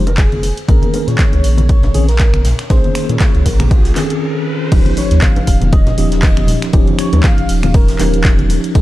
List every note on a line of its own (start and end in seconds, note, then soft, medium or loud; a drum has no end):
0.00 0.52 F1 medium
0.07 0.19 A#4 loud
0.07 closed hi-hat medium
0.07 high bongo medium
0.18 0.57 G#4 loud
0.18 kick loud
0.18 snare loud
0.18 clap loud
0.18 closed hi-hat medium
0.18 ride medium
0.32 closed hi-hat soft
0.32 ride soft
0.32 high conga medium
0.43 open hi-hat medium
0.43 ride medium
0.43 high bongo soft
0.57 closed hi-hat soft
0.57 ride soft
0.68 0.79 A#1 medium
0.68 1.92 D#3 medium
0.68 1.92 A#3 medium
0.68 1.92 C#4 medium
0.68 1.92 G#4 medium
0.68 1.09 A#4 loud
0.68 kick loud
0.68 closed hi-hat medium
0.68 ride medium
0.68 riser medium
0.82 closed hi-hat soft
0.82 high conga medium
0.93 open hi-hat medium
0.93 ride medium
0.93 high bongo medium
1.07 1.16 A#2 loud
1.07 1.57 C#5 loud
1.07 snare soft
1.07 closed hi-hat medium
1.18 kick loud
1.18 snare loud
1.18 clap loud
1.18 closed hi-hat medium
1.18 ride medium
1.18 high conga medium
1.33 1.41 C#2 medium
1.33 closed hi-hat soft
1.33 high bongo medium
1.44 1.90 A#1 medium
1.44 open hi-hat loud
1.44 ride medium
1.57 2.05 C#5 loud
1.57 closed hi-hat soft
1.57 high conga medium
1.57 low conga medium
1.69 kick loud
1.69 closed hi-hat medium
1.69 ride medium
1.83 snare soft
1.83 closed hi-hat soft
1.83 high bongo medium
1.83 low conga medium
1.94 2.53 A#1 medium
1.94 2.05 D#3 medium
1.94 2.05 C4 medium
1.94 2.05 C#4 medium
1.94 2.05 G#4 loud
1.94 open hi-hat loud
1.94 ride medium
1.94 high conga medium
2.08 2.19 A#4 loud
2.08 snare medium
2.08 closed hi-hat medium
2.19 kick loud
2.19 snare loud
2.19 clap loud
2.19 closed hi-hat medium
2.19 ride medium
2.19 high bongo medium
2.34 finger snap medium
2.34 closed hi-hat soft
2.34 high conga medium
2.45 snare medium
2.45 open hi-hat medium
2.45 ride medium
2.45 low conga medium
2.59 finger snap medium
2.59 snare medium
2.59 closed hi-hat medium
2.70 2.81 A#1 loud
2.70 3.93 D#3 medium
2.70 3.94 A#3 medium
2.70 3.94 C#4 medium
2.70 3.94 G#4 medium
2.70 3.11 C5 loud
2.70 kick loud
2.70 snare loud
2.70 closed hi-hat medium
2.70 ride medium
2.70 high bongo medium
2.84 closed hi-hat soft
2.84 high conga medium
2.95 finger snap medium
2.95 open hi-hat loud
2.95 ride medium
3.09 3.18 A#2 loud
3.09 3.47 C#5 loud
3.09 closed hi-hat medium
3.09 high bongo medium
3.20 kick loud
3.20 snare loud
3.20 clap loud
3.20 closed hi-hat medium
3.20 ride medium
3.20 high conga medium
3.35 3.43 C#2 loud
3.35 closed hi-hat soft
3.46 3.92 A#1 medium
3.46 3.70 A#4 loud
3.46 kick medium
3.46 open hi-hat loud
3.46 open hi-hat medium
3.60 finger snap medium
3.60 closed hi-hat medium
3.60 high bongo medium
3.60 high conga medium
3.60 low conga medium
3.71 4.18 F4 medium
3.71 kick loud
3.71 closed hi-hat medium
3.71 ride medium
3.85 snare medium
3.85 open hi-hat medium
3.95 4.69 D#3 medium
3.95 4.69 C4 medium
3.95 4.69 C#4 medium
3.95 4.69 G#4 medium
3.95 snare loud
3.95 clap medium
3.95 open hi-hat loud
3.95 ride medium
3.95 high bongo medium
3.95 high conga medium
4.10 closed hi-hat medium
4.72 4.82 D#1 loud
4.72 5.95 F3 medium
4.72 5.95 C#4 medium
4.72 5.95 D#4 medium
4.72 5.95 G4 medium
4.72 kick loud
4.72 closed hi-hat medium
4.72 crash loud
4.72 ride medium
4.72 sub drop medium
4.85 closed hi-hat soft
4.85 high conga medium
4.97 5.24 C#5 loud
4.97 open hi-hat loud
4.97 ride medium
4.97 high bongo medium
5.11 5.19 D#2 loud
5.11 snare soft
5.11 closed hi-hat medium
5.22 5.72 F5 loud
5.22 kick loud
5.22 snare loud
5.22 clap loud
5.22 closed hi-hat medium
5.22 ride medium
5.22 high conga medium
5.36 5.45 G1 medium
5.36 closed hi-hat soft
5.36 high bongo medium
5.47 5.93 D#1 medium
5.47 kick medium
5.47 open hi-hat loud
5.47 ride medium
5.61 closed hi-hat medium
5.61 high conga medium
5.61 low conga medium
5.72 6.19 D#5 loud
5.72 kick loud
5.72 closed hi-hat medium
5.72 ride medium
5.87 snare medium
5.87 closed hi-hat soft
5.87 high bongo medium
5.87 low conga medium
5.97 6.57 D#1 medium
5.97 6.71 F3 medium
5.97 6.71 C#4 medium
5.97 6.71 D#4 medium
5.97 6.71 G4 medium
5.97 open hi-hat loud
5.97 ride medium
5.97 high conga medium
6.12 snare soft
6.12 closed hi-hat medium
6.23 6.60 D#5 medium
6.23 kick loud
6.23 snare loud
6.23 clap loud
6.23 closed hi-hat medium
6.23 ride loud
6.23 high bongo medium
6.37 finger snap medium
6.37 closed hi-hat soft
6.37 high conga medium
6.47 open hi-hat loud
6.47 ride medium
6.47 low conga loud
6.62 finger snap medium
6.62 snare medium
6.62 closed hi-hat medium
6.73 6.84 D#1 loud
6.73 7.97 F3 medium
6.73 7.97 C#4 medium
6.73 7.97 D#4 medium
6.73 7.97 G4 medium
6.73 kick loud
6.73 closed hi-hat medium
6.73 ride medium
6.73 high bongo soft
6.88 closed hi-hat soft
6.88 high conga loud
6.99 7.22 C#5 loud
6.99 finger snap medium
6.99 open hi-hat loud
6.99 ride medium
7.13 7.21 D#2 loud
7.13 closed hi-hat medium
7.13 high bongo medium
7.23 7.76 F5 loud
7.23 kick loud
7.23 snare loud
7.23 clap loud
7.23 closed hi-hat medium
7.23 ride medium
7.23 high conga medium
7.38 7.46 G1 medium
7.38 closed hi-hat soft
7.49 7.95 D#1 medium
7.49 open hi-hat loud
7.49 open hi-hat medium
7.63 finger snap medium
7.63 closed hi-hat medium
7.63 high bongo soft
7.63 high conga medium
7.63 low conga medium
7.74 8.50 A#4 medium
7.74 kick loud
7.74 closed hi-hat medium
7.74 ride medium
7.88 snare medium
7.88 open hi-hat medium
7.99 8.58 D#1 medium
7.99 8.72 F3 medium
7.99 8.72 C#4 medium
7.99 8.73 D#4 medium
7.99 8.73 G4 medium
7.99 clap medium
7.99 open hi-hat loud
7.99 ride medium
7.99 high bongo medium
7.99 high conga medium
8.14 closed hi-hat medium
8.24 kick loud
8.24 snare loud
8.24 clap loud
8.24 closed hi-hat medium
8.24 ride medium
8.39 closed hi-hat soft
8.39 ride soft
8.39 high conga medium
8.50 open hi-hat loud
8.50 ride medium
8.50 high bongo medium
8.64 closed hi-hat medium
8.64 ride soft
8.75 8.82 D#1 loud
8.75 8.82 F3 medium
8.75 8.82 C4 medium
8.75 8.82 D#4 medium
8.75 8.82 G#4 medium
8.75 kick loud
8.75 closed hi-hat medium
8.75 ride medium